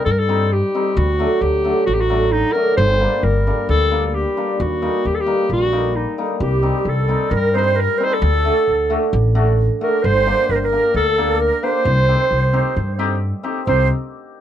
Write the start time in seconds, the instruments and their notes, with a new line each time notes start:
Already playing: hammered dulcimer G3
0.05 upright bass G2, clarinet A4
0.11 clarinet A#4
0.19 clarinet A4
0.29 hammered dulcimer G3 C4 D#4
0.53 clarinet G4
0.75 hammered dulcimer G3 C4 D#4
0.97 upright bass D2, clarinet F#4
1.19 hammered dulcimer F#3 A3 D4
1.41 upright bass D2, clarinet G4
1.64 hammered dulcimer F#3 A3 D4
1.86 upright bass A1, clarinet F#4
1.94 clarinet G4
2.01 clarinet F#4
2.10 hammered dulcimer F#3 A3 D4
2.32 clarinet D#4
2.52 hammered dulcimer F#3 A3 D4, clarinet A#4
2.77 upright bass G1, clarinet C5
3.00 hammered dulcimer G3 A#3 D4
3.23 upright bass G1, clarinet A#4
3.47 hammered dulcimer G3 A#3 D4
3.69 upright bass D2, clarinet A4
3.91 hammered dulcimer G3 A#3 D4
4.06 clarinet A4
4.14 clarinet G4
4.37 hammered dulcimer G3 A#3 D4
4.60 upright bass D#2, clarinet F#4
4.82 hammered dulcimer G3 A#3 D#4
5.05 upright bass D#2, clarinet G4
5.14 clarinet A4
5.21 clarinet G4
5.26 hammered dulcimer G3 A#3 D#4
5.50 upright bass A#1, clarinet F#4
5.73 hammered dulcimer G3 A#3 D#4
5.96 clarinet D#4
6.18 hammered dulcimer G3 A#3 D#4
6.40 upright bass C2, flute G4, clarinet G4
6.63 hammered dulcimer G3 C4 D#4
6.85 upright bass C2, flute A4, clarinet A4
7.08 hammered dulcimer G3 C4 D#4
7.30 upright bass G2, flute A#4
7.36 clarinet A#4
7.53 hammered dulcimer G3 C4 D#4, flute C5
7.57 flute A#4, clarinet C5
7.64 flute C5
7.76 flute A#4
7.80 clarinet A#4
7.98 hammered dulcimer G3 C4 D#4, flute C5
8.04 clarinet C5
8.09 flute A4
8.13 clarinet A4
8.22 upright bass D2
8.45 hammered dulcimer A3 D4 F#4
8.68 upright bass D2
8.90 hammered dulcimer A3 D4 F#4
9.13 upright bass A1
9.35 hammered dulcimer A3 D4 F#4
9.80 hammered dulcimer A3 D4 F#4, flute A#4, clarinet A#4
10.02 upright bass G1, flute C5, clarinet C5
10.26 hammered dulcimer A#3 D4 G4
10.48 upright bass G1, flute A#4, clarinet A#4
10.56 clarinet C5
10.63 flute A#4, clarinet A#4
10.72 hammered dulcimer A#3 D4 G4
10.94 upright bass D2, flute A4, clarinet A4
11.18 hammered dulcimer A#3 D4 G4
11.40 flute A#4, clarinet A#4
11.63 hammered dulcimer A#3 D4 G4, clarinet C5, flute C5
11.85 upright bass C2
12.08 hammered dulcimer C4 D#4 G4
12.31 upright bass C2
12.53 hammered dulcimer C4 D#4 G4
12.77 upright bass G2
12.99 hammered dulcimer C4 D#4 G4
13.43 hammered dulcimer C4 D#4 G4
13.67 upright bass C2, hammered dulcimer C4 D#4 G4, flute C5, clarinet C5